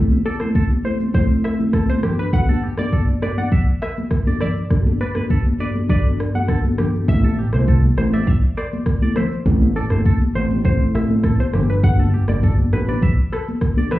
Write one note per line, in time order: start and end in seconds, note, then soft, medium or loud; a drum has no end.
0.00 0.17 A3 medium
0.00 0.17 C4 medium
0.00 0.17 E4 medium
0.00 0.17 A4 loud
0.11 high conga medium
0.11 shaker soft
0.25 0.38 A4 medium
0.25 0.35 D5 medium
0.40 0.62 A3 medium
0.40 0.62 C4 medium
0.40 0.62 E4 medium
0.40 0.62 A4 medium
0.40 0.50 C5 medium
0.40 cross-stick medium
0.40 high conga medium
0.40 shaker soft
0.55 0.65 A4 medium
0.55 kick medium
0.55 shaker medium
0.70 high conga medium
0.70 shaker medium
0.84 1.06 A3 medium
0.84 1.06 C4 medium
0.84 1.06 E4 medium
0.84 1.07 A4 medium
0.84 0.98 C5 medium
0.84 0.94 C5 medium
1.00 high conga medium
1.00 shaker medium
1.14 1.55 A3 medium
1.14 1.56 C4 medium
1.14 1.56 E4 medium
1.14 1.56 A4 loud
1.14 1.28 C5 medium
1.14 1.33 C5 medium
1.14 kick loud
1.14 low conga medium
1.14 shaker medium
1.31 shaker medium
1.44 1.57 E5 medium
1.44 cross-stick medium
1.44 shaker soft
1.59 2.00 A3 medium
1.59 2.00 C4 medium
1.59 2.00 E4 medium
1.59 2.00 A4 medium
1.59 high conga medium
1.59 shaker medium
1.73 1.83 A4 medium
1.73 kick medium
1.73 cross-stick medium
1.73 shaker medium
1.89 2.01 C5 medium
1.89 high conga medium
1.89 shaker medium
2.03 2.31 G2 medium
2.03 2.31 B3 medium
2.03 2.31 D4 medium
2.03 2.31 F#4 medium
2.03 2.13 G4 medium
2.03 2.31 A4 medium
2.03 cross-stick medium
2.03 high conga medium
2.03 low conga medium
2.19 2.31 B4 medium
2.19 shaker soft
2.33 2.55 G2 medium
2.33 2.55 B3 medium
2.33 2.55 D4 medium
2.33 2.55 F#4 medium
2.33 2.55 A4 loud
2.33 2.59 F#5 loud
2.33 kick loud
2.33 shaker medium
2.48 2.63 A4 medium
2.48 high conga medium
2.48 shaker soft
2.63 2.72 G4 medium
2.77 2.99 G2 medium
2.77 2.99 B3 medium
2.77 2.99 D4 medium
2.77 2.99 F#4 medium
2.77 3.00 A4 medium
2.77 2.91 D5 medium
2.77 cross-stick medium
2.77 high conga medium
2.77 shaker soft
2.92 3.02 A4 medium
2.92 kick medium
2.92 shaker medium
3.07 high conga medium
3.07 shaker medium
3.22 3.44 G2 medium
3.22 3.44 B3 medium
3.22 3.44 D4 medium
3.22 3.44 F#4 medium
3.22 3.44 A4 medium
3.22 3.32 B4 medium
3.22 3.36 D5 medium
3.22 cross-stick medium
3.37 3.47 D5 medium
3.37 3.50 F#5 medium
3.37 high conga medium
3.37 shaker medium
3.52 3.62 E5 medium
3.52 kick loud
3.52 low conga medium
3.52 shaker medium
3.68 shaker medium
3.82 3.91 B4 medium
3.82 3.95 E5 medium
3.82 cross-stick medium
3.82 shaker soft
3.97 high conga medium
3.97 shaker soft
4.11 kick medium
4.11 cross-stick medium
4.11 shaker medium
4.26 4.48 G2 medium
4.26 4.48 B3 medium
4.26 4.48 D4 medium
4.26 4.48 F#4 medium
4.26 4.48 A4 medium
4.26 4.36 D5 medium
4.26 high conga medium
4.26 shaker medium
4.41 4.54 D5 medium
4.41 4.51 E5 medium
4.41 cross-stick medium
4.41 high conga medium
4.41 low conga medium
4.57 shaker soft
4.70 4.92 G2 medium
4.70 4.92 B3 medium
4.70 4.92 D4 medium
4.70 4.93 F#4 medium
4.70 4.93 A4 loud
4.70 kick loud
4.70 cross-stick medium
4.70 shaker medium
4.86 high conga medium
4.86 shaker soft
5.00 5.14 B4 medium
5.00 5.10 D5 medium
5.00 shaker medium
5.15 5.37 G2 medium
5.15 5.37 B3 medium
5.15 5.37 D4 medium
5.15 5.37 F#4 medium
5.15 5.37 A4 medium
5.15 5.25 B4 medium
5.15 cross-stick medium
5.15 high conga medium
5.15 shaker soft
5.30 5.40 A4 medium
5.30 kick medium
5.30 shaker medium
5.45 high conga medium
5.45 shaker medium
5.59 5.81 G2 medium
5.59 5.82 B3 medium
5.59 5.82 D4 medium
5.59 5.82 F#4 medium
5.59 5.82 A4 medium
5.59 5.69 B4 medium
5.59 5.73 D5 medium
5.59 shaker medium
5.75 high conga medium
5.75 shaker medium
5.89 6.31 G2 medium
5.89 6.31 B3 medium
5.89 6.31 D4 medium
5.89 6.31 F#4 medium
5.89 6.31 A4 medium
5.89 6.08 B4 medium
5.89 6.03 D5 medium
5.89 kick loud
5.89 low conga medium
5.89 shaker medium
6.06 shaker medium
6.19 cross-stick medium
6.19 shaker soft
6.34 6.75 G2 medium
6.34 6.75 B3 medium
6.34 6.75 D4 medium
6.34 6.75 F#4 medium
6.34 6.75 A4 medium
6.34 6.47 F#5 medium
6.34 high conga medium
6.34 shaker medium
6.48 6.59 A4 medium
6.48 kick medium
6.48 cross-stick medium
6.48 shaker medium
6.64 high conga medium
6.64 shaker medium
6.78 7.06 G2 medium
6.78 7.06 B3 medium
6.78 7.06 D4 medium
6.78 7.06 F#4 medium
6.78 6.88 G4 medium
6.78 7.06 A4 medium
6.78 cross-stick loud
6.78 high conga medium
6.78 low conga medium
6.78 shaker medium
6.95 shaker soft
7.08 7.46 A1 loud
7.08 7.30 A3 medium
7.08 7.30 C4 medium
7.08 7.30 E4 medium
7.08 7.30 A4 loud
7.08 7.34 E5 loud
7.08 kick loud
7.08 shaker medium
7.24 7.33 A4 medium
7.24 high conga medium
7.24 shaker soft
7.39 7.48 G4 medium
7.52 7.90 C2 medium
7.52 7.75 A3 medium
7.52 7.75 C4 medium
7.52 7.75 E4 medium
7.52 7.75 A4 medium
7.52 7.66 C5 medium
7.52 cross-stick medium
7.52 high conga medium
7.52 shaker soft
7.68 7.77 A4 medium
7.68 kick medium
7.68 shaker medium
7.83 high conga medium
7.83 shaker medium
7.97 8.35 A1 loud
7.97 8.19 A3 medium
7.97 8.19 C4 medium
7.97 8.19 E4 medium
7.97 8.19 A4 medium
7.97 8.07 C5 medium
7.97 8.11 C5 medium
7.97 cross-stick medium
8.13 8.28 D5 medium
8.13 8.25 E5 medium
8.13 high conga medium
8.13 shaker medium
8.27 8.37 E5 medium
8.27 kick loud
8.27 low conga medium
8.27 shaker medium
8.43 shaker medium
8.57 8.66 C5 medium
8.57 8.70 D5 medium
8.57 cross-stick medium
8.57 shaker soft
8.72 high conga medium
8.72 shaker medium
8.86 kick medium
8.86 cross-stick medium
8.86 shaker medium
9.02 9.23 A3 medium
9.02 9.23 C4 medium
9.02 9.23 E4 medium
9.02 9.23 A4 medium
9.02 9.11 D5 medium
9.02 high conga medium
9.02 shaker medium
9.16 9.30 C5 medium
9.16 9.26 E5 medium
9.16 cross-stick loud
9.16 high conga medium
9.16 low conga medium
9.32 shaker soft
9.46 9.83 A1 loud
9.46 9.68 A3 medium
9.46 9.68 C4 medium
9.46 9.68 E4 medium
9.46 9.68 A4 loud
9.46 kick loud
9.46 shaker medium
9.61 high conga medium
9.61 shaker soft
9.76 9.89 A4 medium
9.76 9.85 D5 medium
9.90 10.03 G1 medium
9.90 10.12 A3 medium
9.90 10.12 C4 medium
9.90 10.12 E4 medium
9.90 10.12 A4 medium
9.90 10.00 C5 medium
9.90 cross-stick medium
9.90 high conga medium
9.90 shaker soft
10.05 10.15 A4 medium
10.05 kick medium
10.05 shaker medium
10.20 high conga medium
10.20 shaker medium
10.35 10.84 A1 loud
10.35 10.57 A3 medium
10.35 10.57 C4 medium
10.35 10.57 E4 medium
10.35 10.57 A4 medium
10.35 10.48 C5 medium
10.35 10.45 C5 medium
10.50 high conga medium
10.50 shaker medium
10.64 11.06 A3 medium
10.64 11.06 C4 medium
10.64 11.06 E4 medium
10.64 11.06 A4 medium
10.64 10.78 C5 medium
10.64 10.83 C5 medium
10.64 kick loud
10.64 low conga medium
10.64 shaker medium
10.81 shaker medium
10.94 11.32 A1 medium
10.94 11.08 E5 medium
10.94 cross-stick medium
10.94 shaker soft
11.09 11.31 A3 medium
11.09 11.31 C4 medium
11.09 11.31 E4 medium
11.09 11.31 A4 medium
11.09 high conga medium
11.09 shaker soft
11.24 11.34 A4 medium
11.24 kick medium
11.24 cross-stick medium
11.24 shaker medium
11.39 11.52 C5 medium
11.39 high conga medium
11.39 shaker medium
11.53 12.16 G1 loud
11.53 11.81 B3 medium
11.53 11.81 D4 medium
11.53 11.81 F#4 medium
11.53 11.64 G4 medium
11.53 11.81 A4 loud
11.53 cross-stick medium
11.53 high conga medium
11.53 low conga medium
11.70 11.82 B4 medium
11.70 shaker soft
11.83 12.05 B3 medium
11.83 12.05 D4 medium
11.83 12.05 F#4 medium
11.83 12.06 A4 loud
11.83 12.09 F#5 loud
11.83 kick loud
11.83 shaker medium
11.99 12.08 A4 medium
11.99 high conga medium
11.99 shaker soft
12.14 12.23 G4 medium
12.28 12.65 G1 medium
12.28 12.50 B3 medium
12.28 12.50 D4 medium
12.28 12.50 F#4 medium
12.28 12.50 A4 medium
12.28 12.41 D5 medium
12.28 cross-stick medium
12.28 high conga medium
12.28 shaker soft
12.43 12.53 A4 medium
12.43 kick medium
12.43 shaker medium
12.58 high conga medium
12.58 shaker medium
12.72 13.10 A1 medium
12.72 12.94 B3 medium
12.72 12.94 D4 medium
12.72 12.95 F#4 medium
12.72 12.95 A4 medium
12.72 12.86 B4 medium
12.72 12.82 B4 medium
12.72 cross-stick medium
12.88 13.00 B4 medium
12.88 12.97 D5 medium
12.88 high conga medium
12.88 shaker medium
13.02 13.12 E5 medium
13.02 kick loud
13.02 low conga medium
13.02 shaker medium
13.19 shaker medium
13.32 13.45 A4 medium
13.32 13.42 B4 medium
13.32 cross-stick medium
13.32 shaker soft
13.48 high conga medium
13.48 shaker medium
13.61 kick medium
13.61 cross-stick medium
13.61 shaker medium
13.77 13.98 B3 medium
13.77 13.98 D4 medium
13.77 13.98 F#4 medium
13.77 13.99 A4 medium
13.77 13.86 D5 medium
13.77 high conga medium
13.77 shaker medium
13.91 13.99 B4 medium
13.91 13.99 E5 medium
13.91 cross-stick loud
13.91 high conga medium
13.91 low conga medium